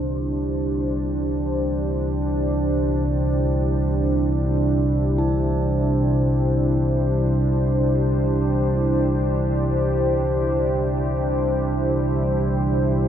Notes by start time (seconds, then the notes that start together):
Already playing: C2 C3 D4 E4 G4 C5
5.18 E4